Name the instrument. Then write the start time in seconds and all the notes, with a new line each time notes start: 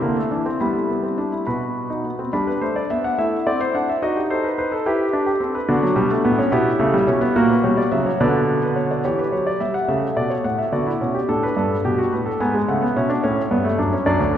grand piano
Already playing: E4 E5
0.02 D3 A#3
0.17 A3
0.31 E3 D4
0.46 C4
0.60 G3 B3 E4 B5
0.75 A3
0.89 B3
1.03 C4
1.18 D4
1.32 E4
1.47 B2 F#4 B4 B5
1.90 D#4
2.04 B3
2.19 C4
2.33 G3 D4 B5
2.47 B4
2.61 A3 C5
2.76 D5
2.90 B3 E5
3.04 F#5
3.18 A3 E4 E5
3.47 C4 D5
3.61 C5
3.75 D4 F#5
3.89 E5
4.02 D#4 F#4 D#5
4.17 G4
4.30 A4 C5
4.44 B4
4.58 B4 C5
4.72 A4
4.86 E4 G4 B4
5.13 D4
5.26 G4
5.40 C4 A4
5.55 B4
5.68 D3 B3 D4 F#4
5.83 F#3
5.96 B2 G3
6.11 A3
6.25 A2 B3
6.39 C#4
6.52 B2 B3 E4 G4
6.79 C#3 A3
6.94 G3
7.07 B2 C#4
7.21 B3
7.36 A#2 A#3 F#4 A#4
7.49 B4
7.64 B2 G3 C#5
7.77 D5
7.92 C#3 F#3 E5
8.06 C#5
8.20 B2 D3 B4 D5
8.62 B4
8.76 C#5
8.91 D5
9.05 E3 G4 C#5
9.19 B4
9.32 F#3 C#5
9.47 D5
9.60 G3 E5
9.74 F#5
9.88 C#3 A3 E5
10.16 B2 D5
10.30 C#5
10.44 A2 F#5
10.59 E5
10.72 D3 B3 F#4 D5
10.87 E4
11.01 B2 C#4 F#4
11.14 G4
11.29 A2 D4 A4
11.43 B4
11.56 G2 A4 B4
11.85 B2 G4
11.98 F#4
12.13 A2 B4
12.26 A4
12.40 G#2 B3 G#5
12.54 G#3
12.68 C#3 A3 F#5
12.82 B3
12.97 B2 C#4 E5
13.09 D4
13.24 A2 C#4
13.51 G2 B3
13.64 A3
13.78 F#2 D4
13.93 C#4
14.06 F#2 D4 D5
14.20 D2
14.34 E2